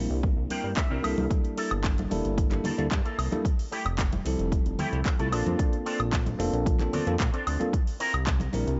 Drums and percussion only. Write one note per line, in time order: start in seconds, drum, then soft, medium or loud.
0.23 kick loud
0.50 open hi-hat loud
0.50 high conga medium
0.77 kick loud
0.77 clap loud
1.04 open hi-hat loud
1.04 high woodblock medium
1.18 high conga medium
1.31 kick loud
1.31 closed hi-hat medium
1.45 closed hi-hat soft
1.58 open hi-hat loud
1.71 closed hi-hat soft
1.71 high woodblock medium
1.84 kick medium
1.84 clap loud
1.84 closed hi-hat medium
1.98 closed hi-hat soft
1.98 high conga medium
2.11 open hi-hat loud
2.11 muted conga medium
2.25 closed hi-hat soft
2.38 kick loud
2.38 closed hi-hat medium
2.51 clap soft
2.51 closed hi-hat soft
2.51 muted conga medium
2.64 open hi-hat medium
2.64 high conga medium
2.64 low conga medium
2.79 closed hi-hat soft
2.91 kick loud
2.91 clap loud
2.91 closed hi-hat medium
3.06 closed hi-hat soft
3.19 open hi-hat loud
3.19 high woodblock medium
3.32 closed hi-hat soft
3.32 high conga medium
3.45 kick loud
3.45 closed hi-hat medium
3.59 open hi-hat medium
3.72 open hi-hat loud
3.86 closed hi-hat soft
3.86 high woodblock medium
3.98 kick medium
3.98 clap loud
3.98 closed hi-hat medium
4.12 closed hi-hat soft
4.12 high conga medium
4.26 open hi-hat loud
4.26 muted conga medium
4.39 closed hi-hat soft
4.52 kick loud
4.52 closed hi-hat medium
4.52 muted conga soft
4.66 closed hi-hat soft
4.78 open hi-hat medium
4.78 muted conga soft
4.78 high conga medium
4.78 low conga medium
4.93 closed hi-hat soft
5.05 kick medium
5.05 clap loud
5.05 closed hi-hat medium
5.19 closed hi-hat soft
5.32 open hi-hat loud
5.32 high woodblock medium
5.46 closed hi-hat soft
5.46 high conga medium
5.59 kick loud
5.59 closed hi-hat medium
5.73 closed hi-hat soft
5.86 open hi-hat loud
6.00 closed hi-hat soft
6.00 high woodblock medium
6.13 kick medium
6.13 clap loud
6.13 closed hi-hat medium
6.26 closed hi-hat soft
6.26 high conga medium
6.40 open hi-hat medium
6.40 muted conga medium
6.53 closed hi-hat soft
6.66 kick loud
6.66 closed hi-hat medium
6.79 clap soft
6.79 closed hi-hat soft
6.79 muted conga medium
6.93 open hi-hat medium
6.93 high conga medium
6.93 low conga medium
7.07 closed hi-hat soft
7.20 kick medium
7.20 clap loud
7.20 closed hi-hat medium
7.34 closed hi-hat soft
7.47 open hi-hat medium
7.47 high woodblock medium
7.61 closed hi-hat soft
7.61 high conga medium
7.73 kick loud
7.73 closed hi-hat medium
7.87 open hi-hat medium
8.00 open hi-hat loud
8.14 closed hi-hat soft
8.14 high woodblock medium
8.27 kick loud
8.27 clap loud
8.27 closed hi-hat medium
8.40 closed hi-hat soft
8.40 high conga medium
8.53 open hi-hat loud
8.53 muted conga medium
8.68 closed hi-hat soft